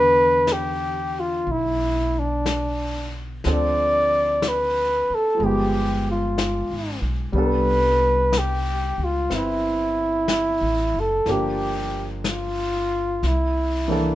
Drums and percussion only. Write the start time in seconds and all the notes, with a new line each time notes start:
0.47 brush sweep, snare, hi-hat pedal
1.46 brush sweep
2.46 brush sweep, snare, hi-hat pedal
3.44 brush sweep, snare
4.42 brush sweep, snare, hi-hat pedal
5.40 brush sweep
6.38 brush sweep, snare, hi-hat pedal
7.35 brush sweep
8.33 brush sweep, snare, hi-hat pedal
9.30 brush sweep, snare
10.28 brush sweep, snare, hi-hat pedal
11.26 brush sweep, snare
12.24 brush sweep, snare, hi-hat pedal
13.23 brush sweep, snare